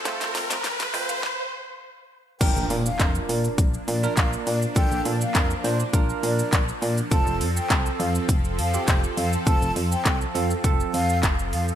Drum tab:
CC |----------------|x---------------|----------------|----------------|
HH |xxoxxxox--------|x-o-x-o-x-o-x-o-|x-o-x-o-x-o-x-o-|x-o-x-o-x-o-x-o-|
SH |xxxxxxxx--------|xxxxxxxxxxxxxxxx|xxxxxxxxxxxxxxxx|xxxxxxxxxxxxxxxx|
CP |----------------|----x-------x---|----x-------x---|----x-------x---|
SD |oooooo--o-------|----------------|----------------|----------------|
BD |o-------o-------|o---o---o---o---|o---o---o---o---|o---o---o---o---|

CC |----------------|
HH |x-o-x-o-x-o-x-o-|
SH |xxxxxxxxxxxxxxxx|
CP |----x-------x---|
SD |----------------|
BD |o---o---o---o---|